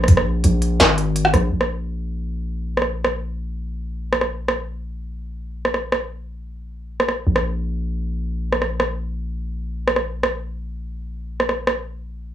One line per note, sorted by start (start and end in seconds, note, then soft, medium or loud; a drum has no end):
0.00 0.43 A#1 medium
0.00 cross-stick medium
0.08 kick loud
0.08 closed hi-hat medium
0.17 cross-stick medium
0.44 0.79 A#1 loud
0.44 closed hi-hat medium
0.62 closed hi-hat soft
0.80 1.33 G#1 medium
0.80 snare loud
0.80 closed hi-hat medium
0.98 closed hi-hat soft
1.16 closed hi-hat medium
1.25 cross-stick medium
1.34 1.50 A#1 loud
1.34 cross-stick medium
1.34 closed hi-hat soft
1.52 7.25 A#1 medium
1.61 cross-stick medium
2.77 cross-stick medium
2.82 cross-stick soft
3.05 cross-stick medium
4.12 cross-stick medium
4.21 cross-stick medium
4.48 cross-stick medium
5.65 cross-stick medium
5.74 cross-stick soft
5.92 cross-stick medium
7.00 cross-stick medium
7.09 cross-stick medium
7.27 12.34 A#1 medium
7.36 cross-stick medium
8.53 cross-stick medium
8.62 cross-stick soft
8.80 cross-stick medium
9.88 cross-stick medium
9.96 cross-stick medium
10.23 cross-stick medium
11.40 cross-stick medium
11.49 cross-stick medium
11.67 cross-stick medium